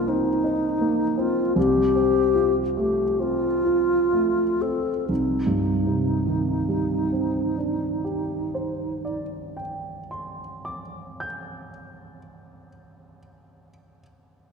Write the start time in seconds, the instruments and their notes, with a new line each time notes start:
Already playing: grand piano C2 A#3 C4 D#4
0.08 grand piano C4, alto flute D#4
0.44 grand piano D#4
0.81 grand piano A#3
1.17 grand piano C4, alto flute F4
1.56 grand piano C2, alto flute G4
1.95 grand piano C4
2.35 grand piano F4
2.76 grand piano A3, alto flute G4
3.20 grand piano C4, alto flute F4
3.64 grand piano F4
4.13 grand piano A3
4.61 grand piano C4, alto flute A4
5.09 grand piano C2, alto flute D#4
5.47 grand piano G2
5.86 grand piano C3
6.27 grand piano D#3
6.69 grand piano G3
7.12 grand piano C4
7.58 grand piano D4
8.04 grand piano G4
8.54 grand piano C5
9.05 grand piano D5
9.57 grand piano G5
10.11 grand piano C6
10.65 grand piano D6
11.20 grand piano G6